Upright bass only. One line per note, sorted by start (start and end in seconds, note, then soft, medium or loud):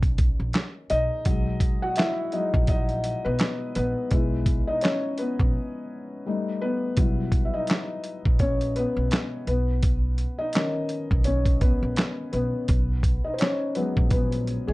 0.00 0.27 B1 medium
0.40 0.52 A#1 medium
0.91 1.07 B1 medium
1.26 1.72 B1 medium
2.54 3.13 A#1 loud
3.26 3.38 B1 medium
3.76 3.93 A#1 medium
4.12 4.58 B1 medium
5.40 5.52 A#1 loud
6.98 7.44 B1 loud
8.26 8.84 A#1 medium
8.97 9.09 B1 medium
9.47 10.23 B1 loud
11.11 11.70 B1 loud
11.83 11.95 A#1 medium
12.33 12.50 B1 medium
12.69 13.15 B1 medium
13.97 14.56 A#1 loud
14.68 14.73 B1 medium